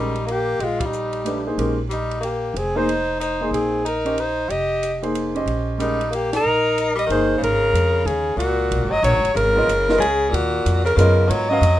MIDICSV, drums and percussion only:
0, 0, Header, 1, 2, 480
1, 0, Start_track
1, 0, Tempo, 324149
1, 880, Time_signature, 3, 2, 24, 8
1, 17469, End_track
2, 0, Start_track
2, 0, Title_t, "Drums"
2, 230, Note_on_c, 9, 51, 36
2, 378, Note_off_c, 9, 51, 0
2, 421, Note_on_c, 9, 51, 46
2, 569, Note_off_c, 9, 51, 0
2, 891, Note_on_c, 9, 51, 49
2, 1040, Note_off_c, 9, 51, 0
2, 1192, Note_on_c, 9, 36, 64
2, 1193, Note_on_c, 9, 51, 60
2, 1340, Note_off_c, 9, 36, 0
2, 1341, Note_off_c, 9, 51, 0
2, 1377, Note_on_c, 9, 44, 48
2, 1525, Note_off_c, 9, 44, 0
2, 1670, Note_on_c, 9, 51, 39
2, 1818, Note_off_c, 9, 51, 0
2, 1863, Note_on_c, 9, 44, 44
2, 1863, Note_on_c, 9, 51, 58
2, 2011, Note_off_c, 9, 44, 0
2, 2011, Note_off_c, 9, 51, 0
2, 2350, Note_on_c, 9, 51, 54
2, 2498, Note_off_c, 9, 51, 0
2, 2828, Note_on_c, 9, 44, 52
2, 2828, Note_on_c, 9, 51, 55
2, 2976, Note_off_c, 9, 44, 0
2, 2976, Note_off_c, 9, 51, 0
2, 3129, Note_on_c, 9, 51, 38
2, 3277, Note_off_c, 9, 51, 0
2, 3304, Note_on_c, 9, 51, 49
2, 3452, Note_off_c, 9, 51, 0
2, 3797, Note_on_c, 9, 51, 51
2, 3945, Note_off_c, 9, 51, 0
2, 4277, Note_on_c, 9, 51, 52
2, 4426, Note_off_c, 9, 51, 0
2, 4757, Note_on_c, 9, 44, 50
2, 4757, Note_on_c, 9, 51, 54
2, 4905, Note_off_c, 9, 44, 0
2, 4905, Note_off_c, 9, 51, 0
2, 5244, Note_on_c, 9, 51, 55
2, 5392, Note_off_c, 9, 51, 0
2, 5716, Note_on_c, 9, 44, 46
2, 5716, Note_on_c, 9, 51, 58
2, 5864, Note_off_c, 9, 44, 0
2, 5864, Note_off_c, 9, 51, 0
2, 6008, Note_on_c, 9, 51, 41
2, 6156, Note_off_c, 9, 51, 0
2, 6185, Note_on_c, 9, 51, 50
2, 6334, Note_off_c, 9, 51, 0
2, 6668, Note_on_c, 9, 51, 48
2, 6816, Note_off_c, 9, 51, 0
2, 7150, Note_on_c, 9, 44, 50
2, 7150, Note_on_c, 9, 51, 55
2, 7298, Note_off_c, 9, 44, 0
2, 7298, Note_off_c, 9, 51, 0
2, 7454, Note_on_c, 9, 51, 37
2, 7602, Note_off_c, 9, 51, 0
2, 7630, Note_on_c, 9, 44, 40
2, 7630, Note_on_c, 9, 51, 51
2, 7778, Note_off_c, 9, 44, 0
2, 7778, Note_off_c, 9, 51, 0
2, 7932, Note_on_c, 9, 51, 35
2, 8080, Note_off_c, 9, 51, 0
2, 8107, Note_on_c, 9, 51, 49
2, 8255, Note_off_c, 9, 51, 0
2, 8591, Note_on_c, 9, 44, 46
2, 8591, Note_on_c, 9, 51, 60
2, 8740, Note_off_c, 9, 44, 0
2, 8740, Note_off_c, 9, 51, 0
2, 8899, Note_on_c, 9, 51, 40
2, 9047, Note_off_c, 9, 51, 0
2, 9077, Note_on_c, 9, 51, 56
2, 9225, Note_off_c, 9, 51, 0
2, 9372, Note_on_c, 9, 38, 61
2, 9375, Note_on_c, 9, 51, 58
2, 9520, Note_off_c, 9, 38, 0
2, 9523, Note_off_c, 9, 51, 0
2, 10038, Note_on_c, 9, 44, 46
2, 10038, Note_on_c, 9, 51, 55
2, 10186, Note_off_c, 9, 44, 0
2, 10186, Note_off_c, 9, 51, 0
2, 10349, Note_on_c, 9, 51, 40
2, 10497, Note_off_c, 9, 51, 0
2, 10517, Note_on_c, 9, 51, 51
2, 10665, Note_off_c, 9, 51, 0
2, 11009, Note_on_c, 9, 51, 56
2, 11158, Note_off_c, 9, 51, 0
2, 11481, Note_on_c, 9, 44, 45
2, 11481, Note_on_c, 9, 51, 61
2, 11629, Note_off_c, 9, 44, 0
2, 11629, Note_off_c, 9, 51, 0
2, 11956, Note_on_c, 9, 51, 54
2, 12105, Note_off_c, 9, 51, 0
2, 12439, Note_on_c, 9, 51, 65
2, 12587, Note_off_c, 9, 51, 0
2, 12908, Note_on_c, 9, 51, 60
2, 13056, Note_off_c, 9, 51, 0
2, 13389, Note_on_c, 9, 44, 56
2, 13389, Note_on_c, 9, 51, 64
2, 13537, Note_off_c, 9, 44, 0
2, 13537, Note_off_c, 9, 51, 0
2, 13694, Note_on_c, 9, 51, 47
2, 13842, Note_off_c, 9, 51, 0
2, 13873, Note_on_c, 9, 51, 61
2, 14021, Note_off_c, 9, 51, 0
2, 14353, Note_on_c, 9, 44, 50
2, 14353, Note_on_c, 9, 51, 61
2, 14501, Note_off_c, 9, 44, 0
2, 14501, Note_off_c, 9, 51, 0
2, 14651, Note_on_c, 9, 38, 62
2, 14799, Note_off_c, 9, 38, 0
2, 14835, Note_on_c, 9, 51, 63
2, 14983, Note_off_c, 9, 51, 0
2, 15312, Note_on_c, 9, 51, 69
2, 15460, Note_off_c, 9, 51, 0
2, 15788, Note_on_c, 9, 44, 53
2, 15788, Note_on_c, 9, 51, 68
2, 15936, Note_off_c, 9, 44, 0
2, 15936, Note_off_c, 9, 51, 0
2, 16093, Note_on_c, 9, 51, 46
2, 16242, Note_off_c, 9, 51, 0
2, 16268, Note_on_c, 9, 44, 62
2, 16268, Note_on_c, 9, 51, 66
2, 16416, Note_off_c, 9, 44, 0
2, 16416, Note_off_c, 9, 51, 0
2, 16741, Note_on_c, 9, 51, 64
2, 16889, Note_off_c, 9, 51, 0
2, 17222, Note_on_c, 9, 44, 49
2, 17222, Note_on_c, 9, 51, 65
2, 17370, Note_off_c, 9, 44, 0
2, 17370, Note_off_c, 9, 51, 0
2, 17469, End_track
0, 0, End_of_file